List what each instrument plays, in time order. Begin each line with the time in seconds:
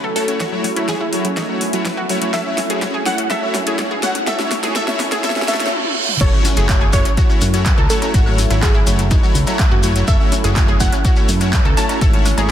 Already playing: analog synth pad F#3 A3 C#4 E4, riser
0.04 analog synth bass C#2, synth arpeggio sound A4
0.16 supersaw synth A3 E4 F#4 C#5, synth arpeggio sound C#4, synth pluck A4, open hi-hat
0.28 supersaw synth A3 E4 F#4 C#5, synth arpeggio sound C#4, closed hi-hat
0.40 analog synth bass G#1, supersaw synth A3 E4 C#5, synth arpeggio sound F#4, kick, snare, closed hi-hat
0.52 synth arpeggio sound F#3, supersaw synth A3 E4 F#4 C#5
0.64 synth arpeggio sound F#3, open hi-hat
0.76 analog synth bass G#1, supersaw synth A3 E4 F#4 C#5, synth arpeggio sound E4, closed hi-hat
0.88 synth arpeggio sound F#3, supersaw synth A3 E4 F#4 C#5, synth pluck G#4, kick, snare, closed hi-hat
1.00 synth arpeggio sound E4
1.13 analog synth bass F#1, synth arpeggio sound F#3, supersaw synth A3 E4 F#4 C#5, open hi-hat
1.25 synth arpeggio sound F#3, closed hi-hat
1.37 supersaw synth A3 E4 F#4 C#5, synth arpeggio sound D#4, kick, snare, closed hi-hat
1.49 synth arpeggio sound F#3, supersaw synth A3 E4 F#4 C#5
1.61 analog synth bass G#1, open hi-hat
1.73 synth arpeggio sound F#3, supersaw synth A3 E4 F#4 C#5, closed hi-hat
1.85 synth arpeggio sound F#3, supersaw synth A3 E4 F#4 B4, kick, snare, closed hi-hat
1.97 analog synth bass F#1, synth arpeggio sound F#4
2.09 synth arpeggio sound F#3, supersaw synth A3 E4 F#4 C#5, open hi-hat
2.22 synth arpeggio sound F#3, supersaw synth A3 E4 F#4 C#5, closed hi-hat
2.33 analog synth bass F#1, supersaw synth E4 C#5, synth arpeggio sound A4, synth pluck E5, kick, snare, closed hi-hat
2.46 supersaw synth A3 E4 F#4 C#5, synth arpeggio sound C#4
2.58 synth arpeggio sound C#4, snare, open hi-hat
2.70 analog synth bass F#1, supersaw synth A3 E4 F#4 C#5, synth arpeggio sound G#4, closed hi-hat
2.82 supersaw synth A3 E4 F#4 C#5, synth arpeggio sound C#4, kick, snare, closed hi-hat
2.94 synth arpeggio sound G#4
3.06 supersaw synth A3 E4 F#4 C#5, synth arpeggio sound C#4, synth pluck F#5, kick, snare, open hi-hat
3.18 synth arpeggio sound C#4, closed hi-hat
3.30 supersaw synth A3 E4 F#4 C#5, synth arpeggio sound A4, synth pluck E5, kick, snare, closed hi-hat
3.42 supersaw synth A3 E4 F#4 C#5, synth arpeggio sound C#4
3.54 analog synth bass F#2, synth arpeggio sound C#4, snare, open hi-hat
3.67 supersaw synth A3 E4 F#4 C#5, synth arpeggio sound G#4, closed hi-hat
3.79 supersaw synth A3 E4 F#4 C#5, synth arpeggio sound C#4, kick, snare, closed hi-hat
3.91 analog synth bass C#2, synth arpeggio sound G#4
4.03 supersaw synth A3 E4 F#4 C#5, synth arpeggio sound C#4, synth pluck F#5, snare, open hi-hat
4.15 synth arpeggio sound C#4, closed hi-hat
4.27 analog synth bass G#1, supersaw synth A3 E4 F#4 C#5, synth arpeggio sound A4, synth pluck E5, kick, snare, closed hi-hat
4.39 supersaw synth A3 E4 F#4 C#5, synth arpeggio sound C#4, snare
4.51 synth arpeggio sound C#4, snare, open hi-hat
4.63 analog synth bass G#1, supersaw synth A3 E4 F#4 C#5, synth arpeggio sound G#4, snare, closed hi-hat
4.75 supersaw synth A3 E4 F#4 C#5, synth arpeggio sound A4, synth pluck E5, kick, snare, closed hi-hat
4.88 supersaw synth A3 E4 F#4 C#5, synth arpeggio sound C#4, snare
5.00 analog synth bass F#1, synth arpeggio sound C#4, kick, snare, open hi-hat
5.12 supersaw synth A3 E4 F#4 C#5, synth arpeggio sound G#4, snare, closed hi-hat
5.24 supersaw synth A3 E4 F#4 C#5, synth arpeggio sound A4, synth pluck E5, kick, snare, closed hi-hat, reverse cymbal
5.30 snare
5.36 supersaw synth A3 E4 F#4 C#5, synth arpeggio sound C#4, snare
5.42 snare
5.48 analog synth bass C#2, supersaw synth A3 E4 F#4 C#5, synth arpeggio sound A4, synth pluck E5, snare, open hi-hat
5.54 snare
5.60 supersaw synth A3 E4 F#4 C#5, synth arpeggio sound C#4, snare, closed hi-hat
5.66 snare
5.72 high tom
5.84 high tom
6.09 mid tom
6.21 analog synth bass F#1, analog synth pad F#3 A3 C#4 E4, supersaw synth A3 E4 F#4 C#5, synth arpeggio sound A4, synth pluck C#5, kick, closed hi-hat, crash, impact, shekere
6.33 supersaw synth A3 E4 F#4 C#5, synth arpeggio sound C#4
6.45 synth arpeggio sound C#4, open hi-hat, high conga, high woodblock, shekere
6.56 analog synth bass F#1, supersaw synth A3 E4 F#4 C#5, synth arpeggio sound G#4, closed hi-hat, shekere
6.69 supersaw synth A3 E4 F#4 C#5, synth arpeggio sound C#4, kick, clap, closed hi-hat, shekere
6.81 synth arpeggio sound G#4
6.93 analog synth bass F#1, supersaw synth A3 E4 F#4 C#5, synth arpeggio sound C#4, synth pluck C#5, kick, open hi-hat, high woodblock, shekere
7.05 synth arpeggio sound C#4, closed hi-hat, shekere
7.17 supersaw synth A3 E4 F#4 C#5, synth arpeggio sound F#4, kick, closed hi-hat, shekere
7.29 supersaw synth A3 E4 F#4 C#5, synth arpeggio sound C#4, shekere
7.41 analog synth bass F#2, open hi-hat, high conga, high woodblock, shekere
7.54 supersaw synth A3 E4 F#4 C#5, synth arpeggio sound C#4, closed hi-hat, shekere
7.66 supersaw synth A3 E4 F#4 B4, synth arpeggio sound C#4, kick, clap, closed hi-hat, shekere
7.78 analog synth bass C#2, synth arpeggio sound A4, cowbell, high woodblock
7.90 supersaw synth A3 E4 F#4 C#5, synth arpeggio sound C#4, synth pluck A4, open hi-hat, shekere
8.02 supersaw synth A3 E4 F#4 C#5, synth arpeggio sound C#4, closed hi-hat, cowbell, shekere
8.14 analog synth bass G#1, supersaw synth A3 E4 F#4 C#5, synth arpeggio sound F#4, kick, closed hi-hat, shekere
8.26 synth arpeggio sound F#3, supersaw synth A3 E4 F#4 C#5, high woodblock
8.38 synth arpeggio sound F#3, open hi-hat, high conga, shekere
8.50 analog synth bass G#1, supersaw synth A3 E4 F#4 C#5, synth arpeggio sound E4, closed hi-hat, shekere
8.62 synth arpeggio sound F#3, supersaw synth A3 E4 F#4, synth pluck G#4, kick, clap, closed hi-hat, shekere
8.75 synth arpeggio sound E4, high woodblock
8.87 analog synth bass F#1, synth arpeggio sound F#3, supersaw synth A3 E4 F#4 C#5, open hi-hat, shekere
8.99 synth arpeggio sound F#3, closed hi-hat, shekere
9.11 supersaw synth A3 E4 F#4 C#5, synth arpeggio sound D#4, kick, closed hi-hat, high woodblock, shekere
9.23 synth arpeggio sound F#3, supersaw synth A3 E4 F#4 C#5, shekere
9.35 analog synth bass C#2, open hi-hat, high conga, shekere
9.47 synth arpeggio sound F#3, supersaw synth A3 E4 F#4 C#5, closed hi-hat, cowbell, shekere
9.59 synth arpeggio sound F#3, supersaw synth A3, kick, clap, closed hi-hat, high woodblock, shekere
9.71 analog synth bass F#1, synth arpeggio sound F#4
9.83 synth arpeggio sound F#3, supersaw synth A3 E4 F#4 C#5, open hi-hat, shekere
9.96 synth arpeggio sound F#3, supersaw synth A3 E4 F#4 C#5, closed hi-hat, shekere
10.07 analog synth bass F#1, supersaw synth A3 E4 F#4 C#5, synth arpeggio sound A4, synth pluck E5, kick, closed hi-hat, high woodblock, shekere
10.20 supersaw synth A3 E4 F#4 C#5, synth arpeggio sound C#4
10.32 synth arpeggio sound C#4, open hi-hat, high conga, shekere
10.44 analog synth bass F#1, supersaw synth A3 E4 F#4 C#5, synth arpeggio sound G#4, closed hi-hat, high woodblock, shekere
10.56 supersaw synth A3 E4 F#4 C#5, synth arpeggio sound C#4, kick, clap, closed hi-hat, shekere
10.68 synth arpeggio sound G#4
10.80 analog synth bass F#1, supersaw synth A3 E4 F#4 C#5, synth arpeggio sound C#4, synth pluck F#5, kick, open hi-hat, shekere
10.92 synth arpeggio sound C#4, closed hi-hat, high woodblock, shekere
11.05 supersaw synth A3 E4 F#4 C#5, synth arpeggio sound F#4, kick, closed hi-hat, shekere
11.16 supersaw synth A3 E4 F#4 C#5, synth arpeggio sound C#4, shekere
11.29 analog synth bass F#2, open hi-hat, high conga, shekere
11.40 supersaw synth A3 E4 F#4 C#5, synth arpeggio sound C#4, closed hi-hat, high woodblock, shekere
11.52 supersaw synth A3 E4 F#4 B4, synth arpeggio sound C#4, kick, clap, closed hi-hat, shekere
11.65 analog synth bass C#2, synth arpeggio sound A4, cowbell
11.77 supersaw synth A3 E4 F#4 C#5, synth arpeggio sound C#4, synth pluck A5, open hi-hat, high woodblock, shekere
11.89 supersaw synth A3 E4 F#4 C#5, synth arpeggio sound C#4, closed hi-hat, cowbell, shekere
12.01 analog synth bass G#1, supersaw synth A3 E4 C#5, synth arpeggio sound A4, kick, closed hi-hat, shekere
12.13 supersaw synth A3 E4 F#4 C#5, synth arpeggio sound C#4, closed hi-hat
12.25 synth arpeggio sound C#4, open hi-hat, high conga, high woodblock, shekere
12.37 analog synth bass G#1, supersaw synth A3 E4 F#4 C#5, synth arpeggio sound G#4, closed hi-hat, cowbell, shekere